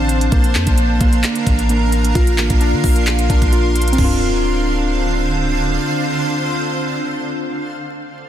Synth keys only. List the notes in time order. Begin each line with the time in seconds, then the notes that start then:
Already playing: C4 D4
0.32 A#3
1.01 A#3
1.69 A#3
2.15 F4
2.38 A#3
2.61 D4
3.30 D4
3.52 F4
3.92 C4
3.98 D4
4.04 F4